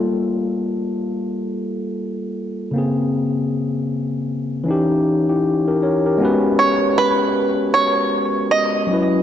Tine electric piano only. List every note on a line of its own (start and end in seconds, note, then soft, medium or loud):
0.00 2.68 G3 medium
0.00 2.72 A#3 medium
0.00 2.71 F4 medium
0.00 2.72 A4 medium
2.71 4.61 C#3 medium
2.71 4.62 A#3 medium
2.76 4.63 C4 medium
2.76 4.64 G#4 medium
4.64 6.15 E3 medium
4.64 6.17 C#4 medium
4.68 5.05 D#4 medium
4.68 5.06 G4 medium
5.29 5.65 E4 soft
5.29 5.65 G4 medium
5.68 5.81 G4 medium
5.68 5.81 A#4 medium
5.83 6.04 A#4 soft
5.83 6.04 C#5 medium
6.06 6.42 G4 soft
6.06 6.42 A#4 medium
6.18 8.84 G#3 medium
6.18 8.85 B3 medium
6.18 8.85 C#4 medium
6.23 8.86 F#4 medium
6.23 8.87 B4 medium
8.87 9.23 F#3 medium
8.87 9.23 C#4 medium
8.87 9.23 F#4 medium
8.92 9.23 E4 medium
8.92 9.23 B4 medium